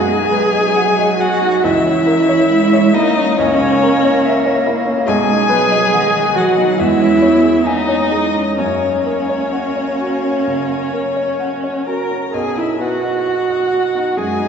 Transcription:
Already playing: grand piano F#2 D#4 F#4 B4 D#5 F#5, cello G#3, viola G#4, violin G#5
0.08 grand piano D#4
0.30 cello F#3, grand piano B4
0.54 grand piano D#5
0.76 grand piano F#5
0.99 grand piano D#5
1.19 viola F#4, grand piano F#4, violin F#5
1.41 grand piano D#4
1.62 grand piano C#2, cello E3, viola E4, violin E5
1.85 grand piano C#4
2.07 grand piano A#4
2.29 grand piano C#5
2.50 cello G#3, grand piano E5
2.73 grand piano C#5
2.93 cello A#3, viola D#4, grand piano E4, violin D#5
3.17 grand piano C#4
3.37 grand piano C#2, cello A#3, viola C#4, violin C#5
3.61 grand piano C#3
3.82 grand piano A#4
4.05 grand piano C#5
4.25 grand piano E5
4.46 grand piano C#5
4.66 grand piano E4
4.87 grand piano C#4
5.06 grand piano B1, cello G#3, viola G#4, violin G#5
5.28 grand piano D#4
5.49 cello F#3, grand piano B4
5.71 grand piano D#5
5.93 cello D#3, grand piano F#5
6.15 grand piano D#5
6.35 cello F#3, viola F#4, grand piano F#4, violin F#5
6.58 grand piano D#4
6.77 grand piano E2, cello G#3, viola E4, violin E5
7.01 grand piano C#4
7.22 cello B3, grand piano C#5
7.42 grand piano G#4
7.64 cello A#3, viola D#4, violin D#5, grand piano G#5
7.88 grand piano C#5
8.11 cello G#3, grand piano G#4
8.35 grand piano C#4
8.57 grand piano F#2, cello A#3, viola C#4, violin C#5
8.83 grand piano C#4
9.06 grand piano A#4
9.29 grand piano C#5
9.52 grand piano F#5
9.77 grand piano C#5
10.01 grand piano F#4
10.24 grand piano C#4
10.48 grand piano C#3
10.71 grand piano C#4
10.93 grand piano A#4
11.16 grand piano C#5
11.39 grand piano F#5
11.63 grand piano C#5
11.86 grand piano F#4, viola A#4, violin A#5
12.11 grand piano C#4
12.33 grand piano B1, viola G#4, violin G#5
12.57 grand piano D#4, viola E4, violin E5
12.79 viola F#4, grand piano B4, violin F#5
13.03 grand piano D#5
13.28 grand piano F#5
13.50 grand piano D#5
13.73 grand piano F#4
13.95 grand piano D#4
14.17 grand piano F#2, cello G#3, viola G#4, violin G#5
14.39 grand piano D#4

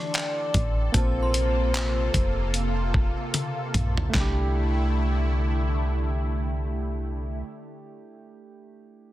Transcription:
Already playing: analog synth pad D3 E3 A4, synth keys A3 D4 E4 G4, soft synth lead D5, synth bell A5 C6 D6
0.14 synth bell G5, clap, closed hi-hat
0.54 fm bass A1, kick, closed hi-hat
0.92 fm bass A#1, analog synth pad C3 A#3 F4, synth keys A#3 C4 F4, soft synth lead C5, synth bell A5, kick, closed hi-hat
0.97 synth keys A4
1.23 synth bell C6
1.34 closed hi-hat
1.74 clap, closed hi-hat
2.14 fm bass F1, kick, closed hi-hat
2.54 closed hi-hat
2.94 kick
3.34 closed hi-hat, high tom
3.74 fm bass A#1, closed hi-hat, mid tom
3.97 floor tom
4.09 synth keys A3 D4
4.14 fm bass C2, analog synth pad D3 A3 E4, synth keys E4, synth bell G5, kick, snare, clap
4.20 synth keys G4

